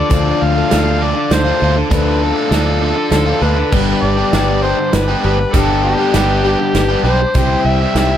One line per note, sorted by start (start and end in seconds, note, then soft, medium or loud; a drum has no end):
0.00 0.10 D4 medium
0.00 0.10 A4 medium
0.00 3.69 A4 medium
0.00 0.44 D5 loud
0.00 7.31 D5 medium
0.00 3.68 F5 medium
0.00 3.68 D6 medium
0.10 0.31 D2 medium
0.10 0.69 D3 medium
0.10 0.69 F3 medium
0.10 0.58 A3 loud
0.10 0.56 D4 loud
0.10 0.54 F4 loud
0.10 0.71 A4 medium
0.10 kick loud
0.10 closed hi-hat medium
0.42 0.62 D2 medium
0.42 1.05 F5 loud
0.55 0.71 A3 medium
0.55 0.72 D4 medium
0.55 0.73 F4 medium
0.70 1.12 D2 medium
0.70 0.99 D3 medium
0.70 1.29 F3 medium
0.70 1.00 A3 loud
0.70 1.02 D4 loud
0.70 1.02 F4 loud
0.70 1.31 A4 medium
0.70 snare medium
0.70 closed hi-hat medium
1.00 1.46 D3 medium
1.00 1.16 A3 medium
1.00 1.17 D4 medium
1.00 1.15 F4 medium
1.00 1.35 D5 loud
1.16 muted overdriven electric guitar stroke medium
1.30 1.51 D2 medium
1.30 1.61 F3 medium
1.30 1.61 D4 medium
1.30 1.61 F4 medium
1.30 1.59 A4 medium
1.30 1.75 C5 loud
1.30 snare medium
1.30 closed hi-hat medium
1.45 1.61 A3 medium
1.45 1.63 D4 medium
1.45 1.63 F4 medium
1.60 1.82 D2 medium
1.60 1.88 D3 medium
1.60 1.76 A3 medium
1.60 1.77 D4 medium
1.60 1.76 F4 medium
1.60 1.91 A4 soft
1.77 muted overdriven electric guitar stroke medium
1.90 2.31 D2 loud
1.90 2.50 D3 medium
1.90 2.50 F3 medium
1.90 2.38 A3 loud
1.90 2.37 D4 medium
1.90 2.34 F4 loud
1.90 2.53 A4 medium
1.90 2.25 B4 medium
1.90 kick loud
1.90 closed hi-hat medium
2.23 3.44 A4 loud
2.35 2.51 A3 medium
2.35 2.53 D4 medium
2.35 2.53 F4 medium
2.51 2.92 D2 medium
2.51 2.80 D3 medium
2.51 3.09 F3 medium
2.51 2.81 A3 medium
2.51 2.83 D4 medium
2.51 2.83 F4 loud
2.51 3.12 A4 medium
2.51 snare medium
2.51 closed hi-hat medium
2.81 3.27 D3 medium
2.81 2.96 A3 medium
2.81 2.96 D4 medium
2.81 2.95 F4 medium
2.96 muted overdriven electric guitar stroke soft
3.10 3.32 D2 medium
3.10 3.42 F3 medium
3.10 3.43 D4 medium
3.10 3.42 F4 medium
3.10 3.41 A4 medium
3.10 snare medium
3.10 closed hi-hat medium
3.26 3.41 A3 medium
3.26 3.43 D4 medium
3.26 3.42 F4 medium
3.40 3.62 D2 medium
3.40 3.70 D3 medium
3.40 3.56 A3 medium
3.40 3.57 D4 medium
3.40 3.56 F4 medium
3.40 3.73 A4 soft
3.40 4.03 B4 loud
3.57 muted overdriven electric guitar stroke medium
3.71 3.93 G1 medium
3.71 4.31 G2 medium
3.71 4.31 D3 medium
3.71 4.20 G3 loud
3.71 4.19 B3 loud
3.71 4.17 D4 medium
3.71 8.18 G4 medium
3.71 4.16 G4 medium
3.71 7.31 B5 medium
3.71 7.32 D6 medium
3.71 kick loud
3.71 crash loud
4.02 4.23 G1 medium
4.02 4.64 D5 loud
4.17 4.33 G3 medium
4.17 4.33 B3 medium
4.17 4.34 D4 medium
4.17 4.35 G4 medium
4.32 4.73 G1 medium
4.32 4.93 G2 medium
4.32 4.93 D3 medium
4.32 4.62 G3 medium
4.32 4.62 B3 medium
4.32 4.64 D4 loud
4.32 4.65 G4 loud
4.32 snare loud
4.32 closed hi-hat medium
4.62 4.79 G3 medium
4.62 4.78 B3 medium
4.62 4.77 D4 medium
4.62 4.78 G4 medium
4.62 4.95 C5 medium
4.79 muted overdriven electric guitar stroke medium
4.93 5.14 G1 medium
4.93 5.24 G3 medium
4.93 5.24 B3 medium
4.93 5.23 D4 medium
4.93 5.22 G4 medium
4.93 5.55 B4 loud
4.93 snare medium
4.93 closed hi-hat medium
5.08 5.23 G3 medium
5.08 5.23 B3 medium
5.08 5.24 D4 medium
5.08 5.26 G4 medium
5.23 5.44 G1 loud
5.23 5.39 G3 medium
5.23 5.38 B3 medium
5.23 5.38 D4 medium
5.23 5.38 G4 medium
5.39 muted overdriven electric guitar stroke soft
5.53 5.94 G1 medium
5.53 6.11 G2 loud
5.53 6.12 D3 loud
5.53 6.00 G3 medium
5.53 5.99 B3 loud
5.53 5.98 D4 loud
5.53 5.97 G4 loud
5.53 5.83 A4 loud
5.53 kick loud
5.53 closed hi-hat medium
5.84 7.01 G4 loud
5.97 6.14 G3 medium
5.97 6.14 B3 medium
5.97 6.14 D4 medium
5.97 6.16 G4 medium
6.13 6.54 G1 medium
6.13 6.74 G2 medium
6.13 6.74 D3 medium
6.13 6.43 G3 medium
6.13 6.44 B3 medium
6.13 6.44 D4 loud
6.13 6.46 G4 loud
6.13 snare medium
6.13 closed hi-hat medium
6.44 6.60 G3 medium
6.44 6.59 B3 medium
6.44 6.59 D4 medium
6.44 6.59 G4 medium
6.48 6.73 G3 soft
6.60 muted overdriven electric guitar stroke medium
6.74 6.95 G1 medium
6.74 7.05 G3 medium
6.74 7.06 B3 medium
6.74 7.05 D4 medium
6.74 7.04 G4 medium
6.74 snare medium
6.74 closed hi-hat medium
6.89 7.05 G3 medium
6.89 7.05 B3 medium
6.89 7.06 D4 medium
6.89 7.08 G4 medium
7.03 7.24 B1 medium
7.03 7.22 G3 medium
7.03 7.21 B3 medium
7.03 7.61 C5 loud
7.08 7.21 D4 medium
7.08 7.21 G4 medium
7.21 muted overdriven electric guitar stroke medium
7.35 7.55 C2 loud
7.35 7.95 C3 loud
7.35 7.96 E3 medium
7.35 7.83 G3 loud
7.35 7.95 C4 medium
7.35 7.82 E4 medium
7.35 7.80 G4 loud
7.35 8.18 E5 medium
7.35 8.18 C6 medium
7.35 8.18 E6 medium
7.35 kick loud
7.35 closed hi-hat medium
7.65 7.85 C2 medium
7.65 8.18 E5 loud
7.81 7.97 G3 medium
7.81 7.97 E4 medium
7.81 7.98 G4 medium
7.95 8.18 C2 loud
7.95 8.18 C3 medium
7.95 8.18 E3 medium
7.95 8.18 G3 medium
7.95 8.18 C4 medium
7.95 8.18 E4 loud
7.95 8.18 G4 loud
7.95 snare medium
7.95 closed hi-hat medium